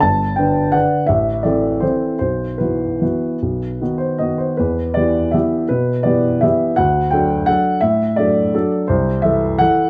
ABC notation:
X:1
M:3/4
L:1/8
Q:1/4=166
K:Dmix
V:1 name="Upright piano"
a2 g2 f2 | e2 d2 c2 | c2 B4- | B3 c ^d c |
B2 d2 e2 | B2 d2 e2 | f2 g2 f2 | e2 d3 z |
[K:Ador] c2 e2 f2 |]
V:2 name="Upright piano"
G,,,2 [D,DB]2 [D,DB]2 | A,,,2 [E,CA]2 [E,CA]2 | B,,,2 [E,B,F]2 [E,B,F]2 | B,,,2 [^D,B,F]2 [D,B,F]2 |
E,,2 [E,B,G]2 [E,B,G]2 | B,,2 [E,B,G]2 [E,B,G]2 | D,,2 [F,DA]2 [F,DA]2 | A,,2 [F,DA]2 [F,DA]2 |
[K:Ador] C,,2 [E,EA]2 [E,EA]2 |]